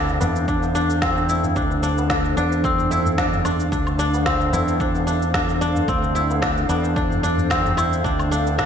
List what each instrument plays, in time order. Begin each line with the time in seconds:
Already playing: fretless electric bass D2, kora C4 D4 E4, ambient pad D4 A4 C5 F5
0.09 cabasa
0.21 fretless electric bass E2, kora D4, tabla na, tabla tin, tabla ge, cabasa
0.36 tabla tin, cabasa
0.48 kora D4, kick, cabasa
0.63 tabla na, cabasa
0.75 kora D4, cabasa
0.90 cabasa
1.02 kora C4, kick, snare, cabasa
1.17 cabasa
1.29 kora E4, cabasa
1.43 tabla tin, tabla ge, cabasa
1.56 kora D4, kick, cabasa
1.70 tabla na, cabasa
1.83 kora D4, cabasa
1.98 tabla na, tabla tin, cabasa
2.10 kora D4, kick, snare, cabasa
2.25 cabasa
2.37 fretless electric bass E2, kora D4, tabla na, tabla tin, cabasa
2.52 tabla tin, cabasa
2.64 kora C4, kick, cabasa
2.78 tabla ge, cabasa
2.91 kora E4, cabasa
3.06 tabla ge, cabasa
3.18 kora D4, kick, snare, cabasa
3.33 tabla ge, cabasa
3.45 kora D4, cabasa, low woodblock
3.60 cabasa
3.72 fretless electric bass D2, kora D4, kick, cabasa
3.87 tabla na, cabasa, low woodblock
3.99 kora D4, cabasa
4.13 tabla na, tabla tin, cabasa
4.26 kora C4, kick, snare, cabasa
4.41 cabasa
4.53 fretless electric bass E2, kora E4, tabla na, tabla tin, tabla ge, cabasa
4.68 tabla tin, cabasa
4.80 kora D4, kick, cabasa
4.95 tabla na, cabasa
5.07 kora D4, cabasa
5.22 cabasa
5.34 kora D4, kick, snare, cabasa
5.49 cabasa
5.61 kora D4, cabasa
5.75 tabla tin, tabla ge, cabasa
5.88 fretless electric bass D2, kora C4, kick, cabasa
6.03 tabla na, cabasa
6.15 kora E4, cabasa
6.30 tabla na, tabla tin, cabasa
6.42 kora D4, kick, snare, cabasa
6.57 cabasa
6.69 fretless electric bass E2, kora D4, tabla na, tabla tin, cabasa
6.83 tabla tin, cabasa
6.96 kora D4, kick, cabasa
7.11 tabla ge, cabasa
7.23 kora D4, cabasa
7.37 tabla ge, cabasa
7.50 kora C4, kick, snare, cabasa
7.65 tabla ge, cabasa
7.77 kora E4, cabasa, low woodblock
7.93 cabasa
8.04 fretless electric bass D2, kora D4, kick, cabasa
8.20 tabla na, cabasa, low woodblock
8.31 kora D4, cabasa
8.46 tabla na, tabla tin, cabasa
8.58 kora D4, kick, snare, cabasa